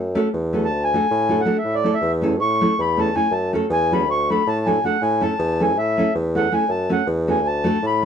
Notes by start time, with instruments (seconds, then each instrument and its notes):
Already playing: bassoon F#2
0.15 nylon-string guitar A3 C#4 F#4 A4
0.33 bassoon E2
0.53 nylon-string guitar A3 C#4 F#4 A4
0.65 accordion A5
0.72 bassoon D2
0.84 accordion G#5
0.93 nylon-string guitar A3 D4 F#4 A4
1.10 bassoon A2
1.29 nylon-string guitar A3 D4 F#4 A4
1.41 accordion F#5
1.45 nylon-string guitar A3 D4 F#4 A4
1.58 accordion E5
1.64 bassoon A2
1.75 accordion D5
1.84 nylon-string guitar A3 C#4 E4 A4
1.94 accordion E5
2.01 bassoon E2
2.22 nylon-string guitar A3 C#4 E4 A4
2.40 bassoon A2, accordion C#6
2.61 nylon-string guitar A3 C#4 E4 A4
2.78 bassoon E2, accordion B5
2.97 nylon-string guitar A3 C#4 E4 A4, accordion A5
3.15 nylon-string guitar A3 C#4 E4 A4, accordion G#5
3.31 bassoon F#2, accordion A5
3.53 nylon-string guitar A3 C#4 F#4 A4
3.70 bassoon E2, accordion G#5
3.91 nylon-string guitar A3 C#4 F#4 A4, accordion B5
4.08 bassoon D2, accordion C#6
4.30 nylon-string guitar A3 D4 F#4 A4, accordion B5
4.47 bassoon A2, accordion A5
4.66 nylon-string guitar A3 D4 F#4 A4, accordion G#5
4.84 nylon-string guitar A3 D4 F#4 A4, accordion F#5
5.01 bassoon A2, accordion G#5
5.21 nylon-string guitar A3 C#4 E4 A4, accordion A5
5.38 bassoon E2
5.60 nylon-string guitar A3 C#4 E4 A4, accordion G#5
5.77 bassoon A2, accordion E5
5.97 nylon-string guitar A3 C#4 E4 A4
6.15 bassoon E2
6.35 nylon-string guitar A3 C#4 E4 A4, accordion F#5
6.52 nylon-string guitar A3 C#4 E4 A4, accordion G#5
6.68 bassoon F#2, accordion A5
6.89 nylon-string guitar A3 C#4 F#4 A4, accordion F#5
7.07 bassoon E2
7.28 nylon-string guitar A3 C#4 F#4 A4, accordion G#5
7.44 bassoon D2, accordion A5
7.64 nylon-string guitar A3 D4 F#4 A4
7.82 bassoon A2, accordion B5